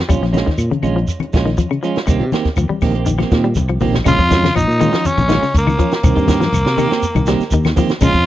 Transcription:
0.08 A#1 G3 C#4 F4, muted clean electric guitar stroke, kick, closed hi-hat, claves, shekere
0.21 A#1 F3, snare, closed hi-hat
0.33 G#3 C#4 F4, closed hi-hat, high conga, shekere
0.37 snare
0.46 D#3, kick, snare
0.58 A#2, closed hi-hat, high conga, claves, shekere
0.71 C#3, closed hi-hat, high conga
0.82 A#1 G#3 C#4 F4, closed hi-hat, high conga, claves, shekere
0.96 F3, closed hi-hat
1.08 closed hi-hat, high conga, shekere
1.20 closed hi-hat, high conga, claves
1.33 A#1 G#3 C#4 F4, kick, snare, closed hi-hat, shekere
1.46 D#3, snare, closed hi-hat
1.57 F3, kick, closed hi-hat, high conga, shekere
1.71 C#3, closed hi-hat, claves
1.83 F3 G#3 C#4 F4, closed hi-hat, shekere
1.96 snare, closed hi-hat
2.07 C2 D#3 A#3 C4 G4, muted clean electric guitar stroke, kick, closed hi-hat, claves, shekere
2.20 C3, closed hi-hat
2.32 D#3 A#3 C4 G4, snare, closed hi-hat, high conga, shekere
2.45 muted fingered electric bass stroke, kick, snare, closed hi-hat
2.56 D#2 F3, closed hi-hat, claves, shekere
2.69 G3, muted fingered electric bass stroke, high conga
2.81 A#1 D#3 A#3 C4 G4, kick, open hi-hat, claves, shekere
2.94 A#3 C4 G4, closed hi-hat
3.06 D#3, closed hi-hat, high conga, shekere
3.18 F3 A#3 C4 G4, snare, closed hi-hat, high conga, claves
3.31 A#2 D#3 A#3 C4 G4, kick, snare, closed hi-hat, shekere
3.44 G3, closed hi-hat
3.55 C2, kick, closed hi-hat, high conga, shekere
3.69 F3, closed hi-hat, claves
3.80 A#1 D#3 F3 A#3 C4 G4, open hi-hat, low conga, shekere
3.93 snare, closed hi-hat, low conga
4.04 A#1 C#3 G#3 C#4 F4, kick, closed hi-hat, low conga, claves, shekere
4.19 F2 F3, kick, shekere
4.30 G#3 C#4 F4, kick, snare, closed hi-hat, high conga, shekere
4.43 C#3, snare, closed hi-hat, high conga, shekere
4.55 A#1 F3 D#4, closed hi-hat, claves, shekere
4.68 A#2, shekere
4.79 D#3 G#3 C#4 F4, closed hi-hat, high conga, claves, shekere
4.92 F3 C#4 F4, snare, closed hi-hat, shekere
5.05 C#4, closed hi-hat, high conga, shekere
5.18 A#1, closed hi-hat, high conga, low conga, claves, shekere
5.28 D#3 G#3 C#4 F4, snare, closed hi-hat, shekere
5.42 C#3, snare, closed hi-hat, shekere
5.54 C#2 A#3, kick, closed hi-hat, shekere
5.67 D#3, high conga, claves, shekere
5.78 F3 C#4 F4, muted clean electric guitar stroke, kick, closed hi-hat, shekere
5.91 A#3, snare, closed hi-hat, shekere
6.03 C2 D#3 C4, muted clean electric guitar stroke, kick, closed hi-hat, low conga, claves, shekere
6.15 G2 D#3 A#3 C4 G4, kick, closed hi-hat, shekere
6.28 D#3 A#3 C4 G4, kick, snare, closed hi-hat, high conga, shekere
6.41 F3, snare, closed hi-hat, high conga, shekere
6.53 C2, closed hi-hat, claves, shekere
6.65 C3, snare, shekere
6.77 D#3 A#3 G4, muted clean electric guitar stroke, open hi-hat, high conga, claves, shekere
6.91 A#3 C4 G4, snare, closed hi-hat, shekere
7.03 closed hi-hat, shekere
7.15 C2 D#3, closed hi-hat, high conga, low conga, claves, shekere
7.26 D#3 G3 A#3 C4 G4, snare, closed hi-hat, shekere
7.40 muted fingered electric bass stroke, snare, closed hi-hat, shekere
7.51 D#2 D#3, kick, closed hi-hat, shekere
7.64 snare, closed hi-hat, high conga, claves, shekere
7.76 D#3 F3 A#3 C4 G4, kick, open hi-hat, shekere
7.89 snare, closed hi-hat, shekere
8.00 A#1 C#3 G#3 C#4 F4, kick, closed hi-hat, low conga, claves, shekere
8.13 F2 C#4 F4, kick, shekere

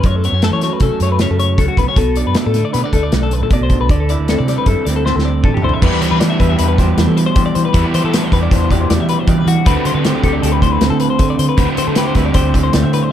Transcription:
Already playing: F#3 A3 E4
0.03 F#2 C#5, kick, closed hi-hat
0.16 A4
0.24 B3 C#5, closed hi-hat
0.32 F#2 C#4
0.42 A3 A4, snare, closed hi-hat
0.51 E3 C#5
0.61 F#3 C#5, snare, closed hi-hat
0.73 B4
0.80 C3 C#4 A4, kick, closed hi-hat
1.00 F#2 A3 C#5, closed hi-hat
1.12 B4
1.19 C#3 C#5, snare, closed hi-hat
1.30 F#2 A4
1.39 C#5, closed hi-hat
1.58 C#2 F#2 A4, kick, closed hi-hat
1.68 F#4
1.77 C2 B3 B4, kick, closed hi-hat
1.88 C#4 C#5
1.96 B1 B2 A4, kick, closed hi-hat
2.16 D4 D5, closed hi-hat
2.27 F#2 B4
2.35 A3 D5, snare, closed hi-hat
2.46 A2 A4
2.54 D3, snare, closed hi-hat
2.65 D5
2.73 B2 B3 B4, snare, closed hi-hat
2.84 D4 D5
2.92 D2 A3 A4, kick, closed hi-hat
3.03 D5
3.12 B1 F#2, snare, closed hi-hat
3.23 A4
3.31 B4, closed hi-hat
3.42 B2 A4
3.51 B2 D5, kick, closed hi-hat
3.61 B1 C5
3.70 D4, kick, closed hi-hat
3.80 B1 B4
3.89 D2 D3 D5, kick, closed hi-hat
4.00 A4
4.09 E4 D5, closed hi-hat
4.19 D2
4.28 C4 A4, snare, closed hi-hat
4.38 C3 D5
4.48 G3 D5, snare, closed hi-hat
4.58 B4
4.66 F#2 E4 A4, kick, closed hi-hat
4.85 D2 C4 D5, snare, closed hi-hat
4.96 A4
5.05 A2 C5, snare
5.15 D2 A4, snare
5.25 D5
5.43 A1 D3 A4, kick, mid tom
5.54 G4, mid tom
5.62 D2 E4 C5
5.69 floor tom
5.74 E5
5.82 E2 E3 G3 B3 D4 E4 G4 B4, kick, crash
6.01 E3 C5, closed hi-hat
6.11 E3 B4
6.20 D4 D5, snare, closed hi-hat
6.30 E5
6.40 E2 E3 E4 B4, kick, closed hi-hat
6.49 G4 E5
6.59 E2 D4 B4, closed hi-hat
6.68 B4
6.78 B2 G4 C5, kick, snare, closed hi-hat
6.89 B4
6.97 E2 G3, snare, closed hi-hat
7.07 E3 A4
7.17 B4, closed hi-hat
7.26 C5
7.36 E2 E3 G4, kick, snare, closed hi-hat
7.46 D5
7.55 E3 C5, closed hi-hat
7.65 B4
7.73 E2 E3 G3 B3 E4, kick, closed hi-hat
7.84 G4
7.94 E3 C5, closed hi-hat
8.04 E3 A4
8.14 D4 B4, snare, closed hi-hat
8.24 C5
8.32 E2 E3 G4 B4, kick, closed hi-hat
8.43 D5
8.51 E2 D4 C5, kick, snare, closed hi-hat
8.71 B2 G4 D5, kick, closed hi-hat
8.81 C5
8.90 E2 G3 D5, snare, closed hi-hat
8.99 E3 E5
9.09 B4, closed hi-hat
9.19 C5
9.27 E2 E3 G4 D5, kick, closed hi-hat
9.39 B4
9.46 E3 F#4, closed hi-hat
9.65 D2 D3 A3 C4 F#4 B4, kick, closed hi-hat
9.85 D3 C5, closed hi-hat
9.94 D3 B4
10.05 G4 C5, snare, closed hi-hat
10.15 D5
10.24 D2 G3 G4 A4, kick, closed hi-hat
10.33 D5
10.42 D2 G4 A4, closed hi-hat
10.52 B4
10.62 A2 C5, kick, closed hi-hat
10.72 B4
10.81 D2 C4, snare, closed hi-hat
10.90 D3 A4
11.00 B4, closed hi-hat
11.10 C5
11.19 D3, kick, closed hi-hat
11.30 D5
11.39 D3 C5, closed hi-hat
11.49 B4
11.57 D2 D3 A3 C4 F#4, kick, closed hi-hat
11.77 D3 C5, closed hi-hat
11.87 D3 A4
11.95 G4 B4, snare, closed hi-hat
12.07 C5
12.15 D2 G3 E4 B4, kick, snare, closed hi-hat
12.25 G4 D5
12.34 D2 G4 C5, kick, closed hi-hat
12.54 A2 D5, kick, closed hi-hat
12.63 C5
12.73 D2 C4 D5, snare, closed hi-hat
12.83 D3 E5
12.93 B4, closed hi-hat
13.03 C5

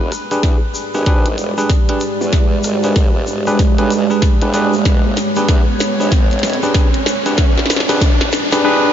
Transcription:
Already playing: E1 G#3 G4 D5, riser
0.12 cross-stick, closed hi-hat, shaker
0.31 D4 G4 G#4 B4, closed hi-hat, shaker
0.43 E2, kick, snare, closed hi-hat, shaker
0.75 shaker
0.94 G#1 D4 G4 G#4 B4, shaker
1.06 D4 G4 G#4 B4, kick, snare, closed hi-hat, shaker
1.26 closed hi-hat
1.38 E1, closed hi-hat, shaker
1.58 D4 G4 G#4 B4, shaker
1.70 kick, snare, closed hi-hat, shaker
1.89 D4 G4 G#4 B4, cross-stick, closed hi-hat
2.00 closed hi-hat, shaker
2.21 E2, shaker
2.32 kick, snare, closed hi-hat, shaker
2.64 G#1, cross-stick, closed hi-hat, shaker
2.83 D4 G4 G#4 B4, closed hi-hat, shaker
2.96 kick, snare, closed hi-hat, shaker
3.27 E1, shaker
3.46 D4 G4 G#4 B4, shaker
3.59 kick, snare, closed hi-hat, shaker
3.78 B1 D4 G4 G#4 B4, closed hi-hat
3.91 closed hi-hat, shaker
4.10 D4 G4 G#4 B4, cross-stick, shaker
4.22 kick, snare, closed hi-hat, shaker
4.42 E1 D4 G4 G#4 B4, closed hi-hat
4.54 D4 G4 G#4 B4, closed hi-hat, shaker
4.73 shaker
4.85 E1 C#5, kick, snare, closed hi-hat, shaker
5.17 snare, closed hi-hat, shaker
5.36 D4 G4 G#4 B4, closed hi-hat, shaker
5.49 E2, kick, snare, closed hi-hat, shaker
5.80 snare, shaker
5.99 G#1 D4 G4 G#4 B4, shaker
6.11 kick, snare, closed hi-hat, shaker
6.31 closed hi-hat
6.33 closed hi-hat
6.39 E1, snare, closed hi-hat
6.43 closed hi-hat, shaker
6.50 closed hi-hat
6.53 closed hi-hat
6.63 D4 G4 G#4 B4, shaker
6.75 kick, snare, closed hi-hat, shaker
6.94 closed hi-hat
7.06 snare, shaker
7.26 E2 D4 G4 G#4 B4, closed hi-hat, shaker
7.37 kick, snare, closed hi-hat, shaker
7.58 snare
7.59 snare
7.66 snare
7.70 G#1, snare, shaker
7.76 snare
7.80 snare
7.89 D4 G4 G#4 B4, snare, closed hi-hat, shaker
8.01 kick, snare, closed hi-hat, shaker
8.21 snare
8.32 snare, shaker
8.52 D4 G4 G#4 B4, snare, shaker
8.64 D4 G4 G#4 B4, reverse cymbal

